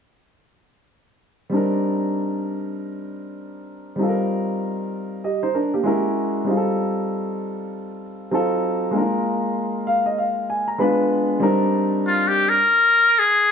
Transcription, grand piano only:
1.50 G3 C4 D4
1.55 D#4 A#4
3.96 G3 C4 D#4
4.01 F4 A4
4.09 A#4
5.24 G4 D#5
5.43 D#4 C5
5.55 D4 A#4
5.74 A#3 G4
5.83 G#3 C#4 E4 F#4 A#4
6.44 G3 C4 D#4
6.49 F4 G#4
6.57 A4
8.31 F#3 C4 D#4 F4 A4
8.91 G#3 A#3 D4
8.96 F4 A#4
9.01 D#4
9.87 F5
10.06 D#5
10.18 F5
10.50 G#5
10.68 A#5
10.78 G#3 B3 D4 F4 B4 B5
11.40 G3 C4 D4 D#4 A#4

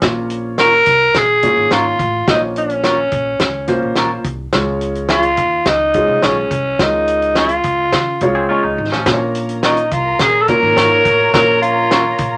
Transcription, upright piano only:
0.02 A#3 C#4 F4 C#5
1.43 A#3 C#4 F4 C#5
2.27 A#3 C#4 F4 C5
2.34 C#5
3.68 A#3 C#4 F4 C5
4.53 G#3 C#4 F4 C#5
5.94 G#3 C#4 F4 G#4
6.79 G#3 C#4 F4 A#4
8.22 G#3 C#4 F4 C#5
9.07 A#3 C#4 F4 C5
9.14 C#5
10.49 A#3 C#4 F4 C#5
11.33 A#3 C#4 F4 C#5

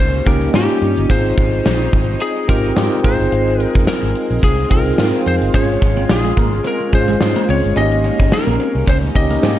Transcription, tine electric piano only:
Already playing: A#3 C#4 D#4 G4
0.26 A#3 C#4 D#4 G4
0.54 A#3 C#4 D#4 F4
1.09 C4 D#4 F4 G#4
2.48 C4 D#4 F4 G4
2.75 C4 D#4 F4 G4
3.03 C4 D#4 F4 G#4
4.70 C4 D#4 F4 G#4
4.99 C4 D#4 F4 A#4
5.53 G#3 C#4 F4 G#4
6.92 G#3 C#4 F4 G#4
7.21 G#3 C#4 F4 G#4
7.76 A#3 C#4 D#4 G4
9.15 A#3 C#4 D#4 G4
9.42 A#3 C#4 D#4 G4

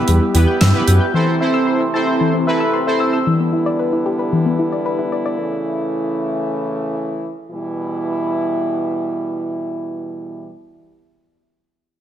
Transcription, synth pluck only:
0.08 G3
0.21 E4
0.34 G5
0.47 G6
0.61 E6
0.74 G5
0.87 G6
1.01 G6
1.14 E3
1.27 C4
1.40 E5
1.54 E6
1.67 C6
1.80 E5
1.94 A5
2.07 C6
2.20 E3
2.34 C4
2.47 E5
2.60 E6
2.74 C6
2.87 E5
3.00 E6
3.13 E6
3.27 E3
3.40 B3
3.53 E4
3.66 D5
3.79 B4
3.93 E4
4.06 G4
4.19 B4
4.32 E3
4.46 B3
4.59 E4
4.72 D5
4.86 B4
4.99 E4
5.12 D5
5.26 D5

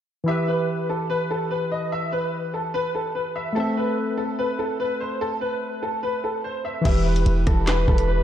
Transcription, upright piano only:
0.28 E5
0.48 B4
0.89 A4
1.10 B4
1.31 A4
1.51 B4
1.72 D#5
1.92 E5
2.12 B4
2.54 A4
2.74 B4
2.95 A4
3.15 B4
3.36 E5
3.56 A4
3.77 B4
4.17 A4
4.39 B4
4.59 A4
4.80 B4
5.00 C5
5.21 A4
5.41 B4
5.83 A4
6.03 B4
6.24 A4
6.44 C5
6.65 E5
6.85 E5
7.06 B4
7.47 A4
7.67 B4
7.88 A4
8.08 B4

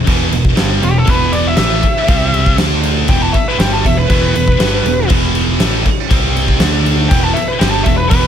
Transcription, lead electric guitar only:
0.84 G4
0.98 A4
1.10 B4
1.32 D5
1.47 E5
1.58 E5
3.10 G5
3.22 A5
3.33 E5
3.48 B4
3.59 G5
3.74 A5
3.86 E5
3.97 B4
4.10 B4
7.09 G5
7.23 A5
7.33 E5
7.47 B4
7.59 G5
7.70 A5
7.83 E5
7.97 B4
8.10 B4

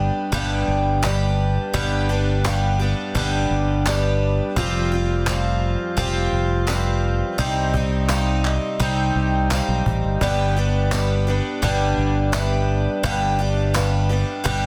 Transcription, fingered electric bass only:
0.33 G1
0.68 G1
1.74 G1
3.15 G1
3.50 G1
4.56 F1
5.97 F1
6.32 F1
7.39 C2
8.80 C2
9.15 C2
9.68 B1
9.86 A1
10.04 G1
10.21 G1
11.63 G1
11.97 G1
13.04 G1
14.46 G1

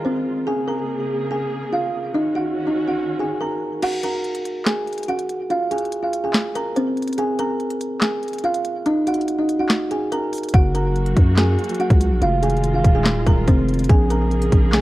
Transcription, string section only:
Already playing: D#3 G#3 F4
0.47 C#3 A#3 G#4
2.15 D#3 C#4 F#4
10.54 F#3 A#3 F#4
12.22 D#3 G#3 F4
13.89 C#3 A#3 G#4

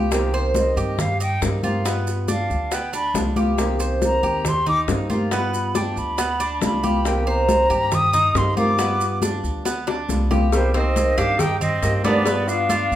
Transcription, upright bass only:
Already playing: C2
0.76 G2
1.42 G2
2.50 D2
3.14 C2
4.23 D#2
4.88 G2
5.96 D2
6.61 C2
7.70 G2
8.34 G2
9.43 D2
10.09 C2
11.18 G2
11.82 G2
12.91 D2

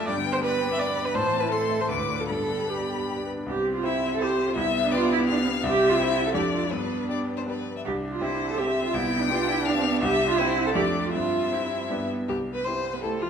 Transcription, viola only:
0.07 D5
0.33 C5
0.44 B4
0.73 E5
0.79 D5
1.05 B4
1.16 C5
1.40 B4
1.51 A4
1.81 C5
1.89 B4
2.20 A4
2.29 A4
2.69 G4
3.47 C4
4.57 B3
5.65 C4
6.34 D4
6.72 B3
7.87 D4
8.60 C4
8.96 B3
9.30 D4
10.40 C4
10.76 D4
11.15 C4
11.90 B3
12.29 G4
12.55 B4
12.65 C5
12.96 B4
13.03 A4
13.22 F4

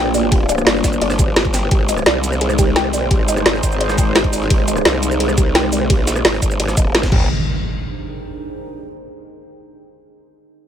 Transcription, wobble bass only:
Already playing: A#1
0.67 G1
0.84 G1
1.02 G1
1.37 G1
1.71 G#1
2.06 C2
3.06 A#1
3.28 G#1
3.46 G#1
3.63 G#1
4.50 G#1
4.85 C2
5.82 B1
6.10 A#1
6.25 G#1
6.42 G#1
6.60 G#1
6.95 G#1
7.12 G1

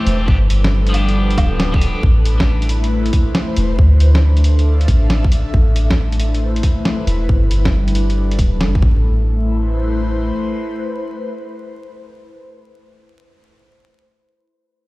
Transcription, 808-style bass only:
0.06 E1
0.28 G1
1.38 D1
2.03 A1
3.57 E1
3.79 D2
4.88 A1
5.54 A1
7.07 E1
7.29 G1
8.39 D1
8.61 G1
8.82 A1

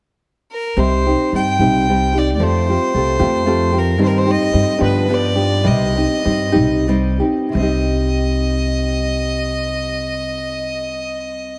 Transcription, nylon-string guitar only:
0.77 C3 G3 C4 D#4 G4
1.07 C4 D#4 G4
1.34 G3 C4 D#4 G4
1.60 C3 G3 C4 D#4 G4
1.88 G3 C4 D#4 G4
2.14 C4 D#4 G4
2.39 F3 A3 C4 F4 G4
2.70 C4 F4 G4
2.94 A3 C4 F4 G4
3.19 F3 A3 C4 F4 G4
3.46 A3 C4 F4 G4
3.72 C4 F4 G4
3.98 G2 D#3 G3 C4 D#4 G4
4.26 G3 C4 D#4 G4
4.52 G3 C4 D#4 G4
4.78 G2 D3 F3 B3 D4 G4
5.08 F3 B3 D4 G4
5.36 F3 B3 D4 G4
5.64 C3 G3 C4 D#4 G4
5.96 C4 D#4 G4
6.24 G3 C4 D#4 G4
6.52 C3 G3 C4 D#4 G4
6.88 G3 C4 D#4 G4
7.20 C4 D#4 G4
7.49 C3
7.53 G3 C4
7.60 D#4 G4

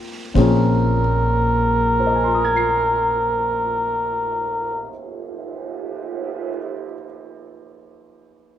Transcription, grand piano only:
Already playing: F3 A#3 C4 D#4 F4 G#4
0.34 A#2 F3 C4 C#4 G#4
2.00 C5
2.07 D#5
2.15 G#5
2.24 C6
2.34 D#6
2.45 G#6
2.56 C7

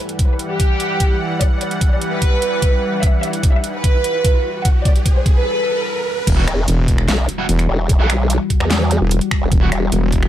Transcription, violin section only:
0.00 B4
0.29 B4
0.50 G4
1.41 D5
1.61 D5
1.92 D5
2.12 B4
3.03 E5
3.23 E5
3.54 E5
3.74 B4
4.65 F#5
4.85 D5
5.16 C5
5.36 B4

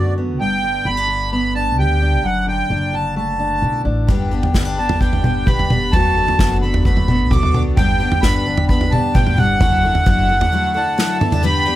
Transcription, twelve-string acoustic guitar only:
4.08 G2 D3 G3 B3 D4 G4
4.31 G3 B3 D4 G4
4.54 G2 D3 G3 B3 D4 G4
4.78 G3 B3 D4 G4
5.00 G3 B3 D4 G4
5.24 G3 B3 D4 G4
5.47 G2 D3 G3 B3 D4 G4
5.70 G3 B3 D4 G4
5.93 F#3 B3 D4 A4
6.16 B3 D4 A4
6.39 F#3 B3 D4 A4
6.63 B3 D4 A4
6.85 F#3 B3 D4 A4
7.08 B3 D4 A4
7.32 F#3 B3 D4 A4
7.54 B3 D4 A4
7.77 G2 D3 G3 B3 D4 G4
8.00 G3 B3 D4 G4
8.23 G2 D3 G3 B3 D4 G4
8.46 G3 B3 D4 G4
8.69 G3 B3 D4 G4
8.92 G3 B3 D4 G4
9.14 G2 D3 G3 B3 D4 G4
9.37 G3 B3 D4 G4
9.60 F#3 D4 E4 A4
9.83 D4 E4 A4
10.06 F#3 D4 E4 A4
10.29 D4 E4 A4
10.52 F#3 D4 E4 A4
10.74 D4 E4 A4
10.98 F#3 D4 E4 A4
11.21 D4 E4 A4
11.43 G2 D3 G3 B3 D4 G4
11.66 G3 B3 D4 G4

